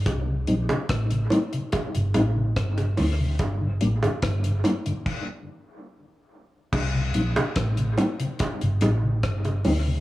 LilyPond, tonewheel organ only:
<<
  \new Staff \with { instrumentName = "Tonewheel organ" } { \time 4/4 \key c \dorian \tempo 4 = 72 r8 <g c' ees'>8 r8 <g c' ees'>8 r8 <g c' ees'>8 r8 <g c' ees'>8 | r8 <g bes d'>8 r8 <g bes d'>8 r2 | r8 <g c' ees'>8 r8 <g c' ees'>8 r8 <g c' ees'>8 r8 <g c' ees'>8 | }
  \new Staff \with { instrumentName = "Tonewheel organ" } { \clef bass \time 4/4 \key c \dorian r16 c16 r16 c16 r16 c16 r16 c16 r16 c16 r16 c16 r16 c16 r16 c16 | r16 <g, d>16 r16 <g, d>16 r16 <g, d>16 r16 <g, d>16 r2 | r16 c16 r16 c16 r16 c16 r16 c16 r16 c16 r16 c16 r16 c16 r16 c16 | }
>>